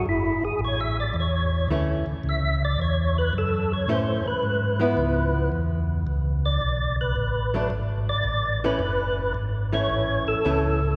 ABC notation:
X:1
M:4/4
L:1/8
Q:"Swing" 1/4=110
K:F#m
V:1 name="Tonewheel organ"
E G (3c e d c2 z2 | e d c B A c ^B =B- | B4 z3 d- | d B3 z d2 B- |
B2 z c2 A3 |]
V:2 name="Hollow-body jazz guitar"
z6 [E,A,C] z | z6 [E,A,C] z | z [^E,B,=E]3 z4 | z3 [F,A,D] z3 [E,A,C] |
z3 [E,A,C]3 [E,A,C] z |]
V:3 name="Tonewheel organ" clef=bass
F,,, F,,, A,,,2 E,,2 D,, D,, | C,,2 E,,2 F,,2 A,, A,, | G,,2 C,,2 E,,2 C,,2 | B,,,2 A,,,2 G,,,2 A,,,2 |
F,,,2 G,,,2 A,,, A,,, C,,2 |]